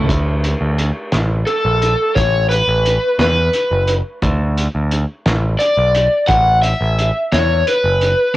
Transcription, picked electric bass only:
0.10 D2
0.61 D2
1.14 A1
1.65 A#1
2.16 A1
2.67 A1
3.19 E2
3.71 F#1
4.23 D2
4.75 D2
5.26 A1
5.77 B1
6.29 A1
6.81 A1
7.33 E2
7.84 F#1

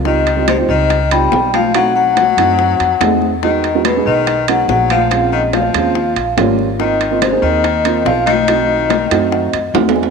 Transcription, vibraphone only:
0.06 D#5
0.49 C5
0.70 D#5
1.12 G5
1.55 F5
1.75 F#5
1.97 F#5
3.43 D#5
3.86 B4
4.07 D#5
4.49 F#5
4.70 F#5
4.91 F5
5.33 D#5
5.54 F5
6.81 D#5
7.23 C5
7.43 D#5
8.06 F5
8.26 D#5

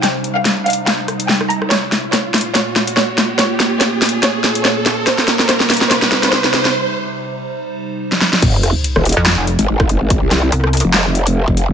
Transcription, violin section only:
0.03 G5
0.36 F5
0.66 F5
0.87 F5
1.29 G5
1.50 A#5
1.71 C#5
2.13 C#5
2.55 C#5
2.97 C#5
3.39 C#5
3.81 C#5
4.23 C#5
4.65 C#5
5.07 C5
5.49 C5
5.91 C5
6.33 C5

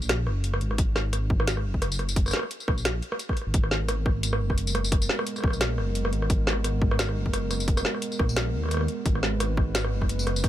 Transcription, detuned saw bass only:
Already playing: A#1
0.27 F#1
0.61 G#1
0.78 G#1
1.65 F#1
2.68 A#1
3.47 G#1
3.54 G#1
4.40 F#1
5.44 A#1
5.78 F#1
6.13 G#1
6.30 G#1
7.16 F#1
8.19 A#1
8.54 D#2
9.06 G#1
9.92 F#1

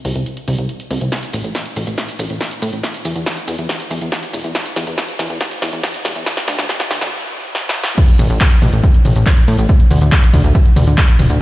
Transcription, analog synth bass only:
0.05 C2
0.16 C2
0.48 C2
0.58 C2
0.91 C2
1.01 C2
1.33 A1
1.44 A1
1.76 A1
1.87 A1
2.19 A1
2.30 A1
2.62 A2
2.73 A1
3.05 E2
3.16 E2
3.48 E2
3.58 E2
3.91 E2
4.01 E2
4.33 E1
4.44 E2
4.76 E2
4.87 E2
5.19 E2
5.30 E2
5.62 E2
5.73 E2
6.05 E1
6.16 E2
6.48 D2
6.58 D2
6.91 D2
7.01 D2
8.19 A1
8.30 A1
8.62 A1
8.73 A1
9.05 A1
9.16 A1
9.48 A2
9.58 A1
9.91 D2
10.01 D2
10.33 D2
10.44 D2
10.76 D2
10.87 D2
11.19 D1
11.30 D2

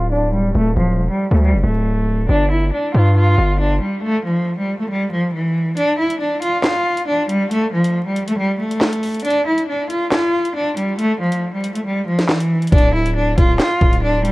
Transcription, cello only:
0.12 D4
0.33 G3
0.55 A3
0.77 F3
1.10 G3
1.32 A3
1.42 G3
1.64 A3
2.29 D4
2.51 E4
2.73 D4
2.94 F4
3.16 F4
3.60 D4
3.81 G3
4.03 A3
4.25 F3
4.58 G3
4.79 A3
4.90 G3
5.12 F3
5.33 E3
5.77 D4
5.99 E4
6.20 D4
6.42 F4
6.64 F4
7.07 D4
7.29 G3
7.51 A3
7.73 F3
8.06 G3
8.28 A3
8.38 G3
8.60 A3
9.25 D4
9.47 E4
9.68 D4
9.90 F4
10.12 F4
10.55 D4
10.77 G3
10.99 A3
11.21 F3
11.54 G3
11.75 A3
11.86 G3
12.07 F3
12.29 E3
12.73 D4
12.94 E4
13.16 D4
13.38 F4
13.60 F4
14.03 D4
14.25 G3

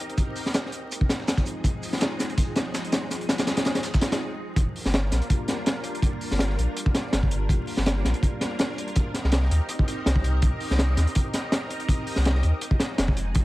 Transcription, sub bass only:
4.56 G1
4.85 G1
5.12 A#1
6.31 G1
6.58 A#1
7.13 G1
7.49 G1
7.78 G1
8.05 A#1
9.24 C2
9.51 D#2
10.06 C2
10.42 C2
10.70 C2
10.97 D#2
12.17 C2
12.44 D#2
12.98 F1
13.36 F1

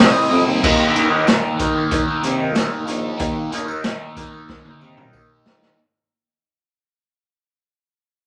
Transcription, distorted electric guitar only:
Already playing: C3
0.00 G3 C4
0.30 C3 G3 C4
0.46 G3 C4
0.62 D#3 A#3 D#4
0.95 D#3 A#3 D#4
1.10 A#3 D#4
1.25 D#3 A#3 D#4
1.58 D#3 A#3 D#4
1.75 A#3 D#4
2.07 A#3 D#4
2.22 D#3 A#3 D#4
2.39 A#3 D#4
2.54 D#3 A#3 D#4
2.86 D#3 A#3 D#4
3.18 D#3 A#3 D#4
3.52 D#3 A#3 D#4
3.66 A#3 D#4
3.83 D#3 A#3 D#4
4.16 D#3 A#3 D#4
4.32 A#3 D#4
4.64 A#3 D#4
4.81 D#3 A#3 D#4
4.97 A#3 D#4
5.14 D#3 A#3 D#4
5.46 D#3 A#3 D#4

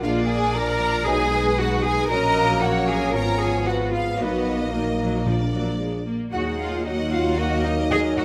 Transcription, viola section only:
0.04 A#3 D4
0.55 F3 F4
0.80 F3
1.07 G#3 D#4
1.58 D#4
2.11 F#3 F#4
2.62 F#3 A#4
3.14 F3 F4
3.66 G#3 F4
4.19 F#3 F#4
4.72 D#3
4.99 F#3
5.26 F3
5.51 F#3
5.79 G#3
6.06 A#3
6.33 A#3 D#4
6.86 F#4
7.38 A#4
7.91 F#3 A#4

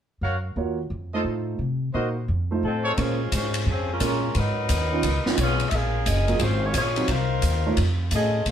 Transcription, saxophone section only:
2.65 F3 C4 D#4 A4
2.99 G#3 F4 C5 C#5
3.34 G#3 C#4 F4 C5
3.69 F3 C4 C#4 G#4
3.92 G#3 C#4 F4 A#4
4.02 G#3 C#4 F4 A#4
4.37 F#3 D#4 A#4 B4
5.41 B3 F4 G#4 C#5
5.69 E5
5.75 C#4 G#4 A#4 F5
6.08 C#4 G#4 A#4 D#5
6.42 G#3 C#4 F4 C5
6.65 A#3 F4 G#4 C#5
6.77 A#3 F4 G#4 C#5
7.11 D#4 A#4 C5 F5
8.15 C#4 G#4 A4 D#5

